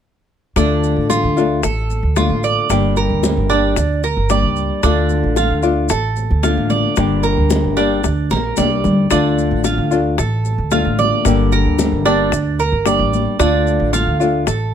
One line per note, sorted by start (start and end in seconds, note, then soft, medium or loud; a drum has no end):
0.56 0.94 D2 loud
0.56 1.36 D3 medium
0.56 1.36 A3 medium
0.56 1.08 D4 medium
0.56 1.37 D4 medium
0.56 1.36 F4 medium
0.56 high bongo medium
0.56 high conga soft
0.56 maracas medium
0.83 high conga soft
0.83 maracas soft
0.96 1.22 A1 medium
1.10 1.62 F4 medium
1.10 high bongo medium
1.10 high conga medium
1.10 maracas medium
1.23 1.61 D2 medium
1.37 1.62 A3 medium
1.37 1.62 D4 medium
1.37 1.62 F4 medium
1.37 high conga soft
1.37 maracas soft
1.63 2.01 A1 medium
1.63 2.15 A4 medium
1.63 muted nylon-string guitar stroke medium
1.63 high bongo medium
1.63 high conga soft
1.63 maracas medium
1.90 high conga soft
1.90 maracas soft
2.03 2.28 D2 medium
2.16 2.69 D3 soft
2.16 2.69 A3 soft
2.16 2.69 D4 soft
2.16 2.43 F4 medium
2.16 2.70 F4 medium
2.16 high bongo medium
2.16 low bongo medium
2.16 high conga medium
2.16 maracas medium
2.30 2.55 A1 medium
2.43 2.95 D5 medium
2.43 maracas soft
2.69 3.08 G1 loud
2.69 3.49 D3 medium
2.69 3.49 G3 medium
2.69 3.49 A#3 medium
2.69 3.50 D4 medium
2.69 3.48 G4 medium
2.69 high bongo medium
2.69 high conga soft
2.69 maracas medium
2.96 3.49 A#4 medium
2.96 high bongo soft
2.96 high conga soft
2.96 maracas soft
3.10 3.35 D2 medium
3.23 high bongo medium
3.23 high conga medium
3.23 maracas medium
3.37 3.75 G1 medium
3.49 3.76 G3 soft
3.49 3.76 A#3 medium
3.49 4.02 D4 medium
3.49 3.76 D4 medium
3.49 3.75 G4 medium
3.49 high bongo soft
3.49 high conga soft
3.49 maracas soft
3.76 4.14 D2 medium
3.76 muted nylon-string guitar stroke medium
3.76 high bongo medium
3.76 high conga soft
3.76 maracas medium
4.03 4.29 A#4 medium
4.03 high bongo soft
4.03 high conga soft
4.03 maracas soft
4.17 4.42 G1 medium
4.30 4.82 G3 soft
4.30 4.82 A#3 soft
4.30 4.83 D4 medium
4.30 4.83 G4 medium
4.30 4.82 D5 medium
4.30 high bongo medium
4.30 low bongo medium
4.30 high conga soft
4.30 maracas medium
4.43 4.69 C#2 medium
4.56 maracas soft
4.83 5.21 D2 loud
4.83 5.63 D3 medium
4.83 5.63 A3 medium
4.83 5.35 D4 medium
4.83 5.63 D4 medium
4.83 5.62 F4 medium
4.83 high bongo medium
4.83 high conga soft
4.83 maracas medium
5.09 high conga soft
5.09 maracas soft
5.24 5.49 A1 medium
5.36 5.89 F4 medium
5.36 high bongo medium
5.36 high conga medium
5.36 maracas medium
5.50 5.88 D2 medium
5.63 5.89 A3 medium
5.63 5.89 D4 medium
5.63 5.89 F4 medium
5.63 high conga soft
5.63 maracas soft
5.89 6.28 A1 medium
5.89 6.42 A4 medium
5.89 muted nylon-string guitar stroke medium
5.89 high bongo medium
5.89 high conga soft
5.89 maracas medium
6.16 high conga soft
6.16 maracas soft
6.30 6.56 D2 medium
6.43 6.96 D3 soft
6.43 6.96 A3 medium
6.43 6.97 D4 medium
6.43 6.69 F4 medium
6.43 6.97 F4 soft
6.43 high bongo medium
6.43 low bongo medium
6.43 high conga medium
6.43 maracas medium
6.57 6.83 A1 medium
6.70 7.22 D5 medium
6.70 high conga medium
6.70 maracas soft
6.96 7.35 G1 loud
6.96 7.76 D3 medium
6.96 7.76 G3 medium
6.96 7.76 A#3 medium
6.96 7.77 D4 medium
6.96 7.75 G4 medium
6.96 high bongo medium
6.96 high conga soft
6.96 maracas medium
7.23 7.75 A#4 medium
7.23 high bongo soft
7.23 high conga soft
7.23 maracas soft
7.37 7.63 D2 medium
7.50 high bongo medium
7.50 high conga medium
7.50 maracas medium
7.64 8.02 G1 medium
7.77 8.02 G3 soft
7.77 8.02 A#3 medium
7.77 8.29 D4 medium
7.77 8.03 D4 medium
7.77 8.03 G4 medium
7.77 high bongo soft
7.77 high conga soft
7.77 maracas soft
8.03 8.29 D2 medium
8.03 muted nylon-string guitar stroke medium
8.03 high bongo medium
8.03 high conga soft
8.03 maracas medium
8.30 8.55 A#1 medium
8.30 8.57 A#4 medium
8.30 high bongo soft
8.30 high conga medium
8.30 maracas soft
8.56 8.82 C2 medium
8.56 9.09 G3 soft
8.56 9.09 A#3 soft
8.56 9.10 D4 soft
8.56 9.10 G4 soft
8.56 9.09 D5 medium
8.56 high bongo medium
8.56 high conga medium
8.56 maracas medium
8.84 9.08 D2 medium
8.84 low bongo medium
8.84 low conga medium
8.84 maracas soft
9.10 9.49 D2 medium
9.10 9.90 D3 medium
9.10 9.90 A3 medium
9.10 9.63 D4 medium
9.10 9.91 D4 medium
9.10 9.90 F4 medium
9.10 high bongo medium
9.10 maracas medium
9.38 high conga soft
9.38 maracas soft
9.51 9.77 A1 medium
9.64 10.17 F4 medium
9.64 high bongo medium
9.64 high conga medium
9.64 maracas medium
9.78 10.16 D2 medium
9.91 10.17 A3 soft
9.91 10.17 D4 medium
9.91 10.17 F4 medium
9.91 high conga soft
9.91 maracas soft
10.18 10.56 A1 medium
10.18 10.70 A4 medium
10.18 muted nylon-string guitar stroke medium
10.18 high bongo medium
10.18 high conga soft
10.18 maracas medium
10.45 high conga soft
10.45 maracas soft
10.58 10.84 D2 medium
10.71 11.24 D3 soft
10.71 11.24 A3 soft
10.71 11.24 D4 medium
10.71 10.98 F4 medium
10.71 11.25 F4 medium
10.71 high bongo medium
10.71 low bongo medium
10.71 high conga medium
10.71 maracas medium
10.85 11.10 A1 medium
10.98 11.51 D5 medium
10.98 high conga medium
10.98 maracas soft
11.25 11.63 G1 medium
11.25 12.05 D3 medium
11.25 12.05 G3 medium
11.25 12.05 A#3 medium
11.25 12.05 D4 medium
11.25 12.04 G4 medium
11.25 high bongo medium
11.25 high conga soft
11.25 maracas medium
11.52 12.04 A#4 medium
11.52 high bongo soft
11.52 high conga soft
11.52 maracas soft
11.65 11.91 D2 medium
11.79 high bongo medium
11.79 high conga medium
11.79 maracas medium
11.92 12.30 G1 medium
12.05 12.31 G3 soft
12.05 12.31 A#3 medium
12.05 12.31 D4 medium
12.05 12.58 D4 medium
12.05 12.31 G4 medium
12.05 high bongo soft
12.05 high conga soft
12.05 maracas soft
12.32 12.71 D2 medium
12.32 muted nylon-string guitar stroke medium
12.32 high bongo medium
12.32 high conga soft
12.32 maracas medium
12.59 12.85 A#4 medium
12.59 high bongo soft
12.59 high conga soft
12.59 maracas soft
12.72 12.98 G1 medium
12.85 13.38 G3 soft
12.85 13.38 A#3 soft
12.85 13.39 D4 medium
12.85 13.39 G4 medium
12.85 13.38 D5 medium
12.85 high bongo medium
12.85 low bongo medium
12.85 high conga soft
12.85 maracas medium
12.99 13.25 A1 medium
13.13 high conga medium
13.13 maracas soft
13.39 13.78 D2 loud
13.39 14.19 D3 medium
13.39 14.19 A3 medium
13.39 13.92 D4 medium
13.39 14.20 D4 medium
13.39 14.19 F4 medium
13.39 high bongo medium
13.39 high conga soft
13.39 maracas medium
13.67 high conga soft
13.67 maracas soft
13.80 14.05 A1 medium
13.93 14.45 F4 medium
13.93 high bongo medium
13.93 high conga medium
13.93 maracas medium
14.07 14.45 D2 medium
14.20 14.46 A3 medium
14.20 14.46 D4 medium
14.20 14.46 F4 medium
14.20 high conga soft
14.20 maracas soft
14.47 14.74 A1 medium
14.47 14.74 A4 medium
14.47 muted nylon-string guitar stroke medium
14.47 high bongo medium
14.47 high conga soft
14.47 maracas medium